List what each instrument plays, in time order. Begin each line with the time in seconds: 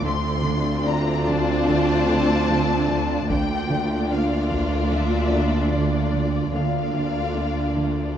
0.05 cello section D2 D3, double bass section D2, viola section C4 D4, violin section F4 D5 C6, harp E5
0.46 cello section D3
0.87 cello section D4, violin section A#5
1.27 cello section D3, violin section A5
1.68 cello section D3
2.09 cello section D3
2.49 cello section D3
2.89 cello section D3
3.29 double bass section D2, cello section D2 D3, viola section A#3 D4, violin section F4 D5 G5, taiko
3.71 cello section D3
4.11 cello section D4, violin section F5
4.52 cello section D3, taiko
4.92 cello section D3, violin section E5
5.32 cello section D3
5.73 cello section D3, violin section D5
6.14 cello section D3
6.54 cello section D2 D3, double bass section D2, viola section A#3 D4, violin section F4 D5 F5, harp F5
6.95 cello section D3
7.35 cello section D4
7.76 cello section D3